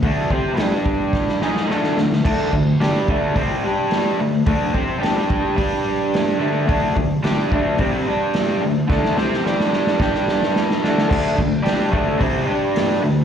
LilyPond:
<<
  \new Staff \with { instrumentName = "Overdriven electric guitar" } { \time 4/4 \key g \lydian \tempo 4 = 108 <d a d'>8 <c' g' c''>8 <g d' g'>4. <gis ees' gis'>8 <d a d'>8 <d a>8 | <d a d'>8 <d a>8 <g d' g'>8 <d a d'>8 <c g c'>8 <g d' g'>4 <d a>8 | <d a d'>8 <c' g' c''>8 <g d' g'>4 <g d' g'>4. <d a d'>8 | <d a d'>8 <d a>8 <g d' g'>8 <d a d'>8 <c g c'>8 <g d' g'>4 <d a>8 |
<d a d'>8 <c' g' c''>8 <g d' g'>4 <g d' g'>4. <d a d'>8 | <d a d'>8 <d a>8 <g d' g'>8 <d a d'>8 <c g c'>8 <g d' g'>4 <d a>8 | }
  \new DrumStaff \with { instrumentName = "Drums" } \drummode { \time 4/4 <hho bd>8 bd8 <hho sn>8 bd8 <bd sn>16 sn16 sn16 sn16 sn16 sn16 sn16 sn16 | <cymc bd>8 bd8 <hho sn>8 bd8 <hho bd>4 <hho sn>4 | <hho bd>8 bd8 <hho sn>8 bd8 <hho bd>4 <hho sn>4 | <hho bd>8 bd8 <hho sn>8 bd8 <hho bd>4 <hho sn>4 |
<bd sn>16 sn16 sn16 sn16 sn16 sn16 sn16 sn16 <bd sn>16 sn16 sn16 sn16 sn16 sn16 sn16 sn16 | <cymc bd>8 bd8 <hho sn>8 bd8 <hho bd>4 <hho sn>4 | }
>>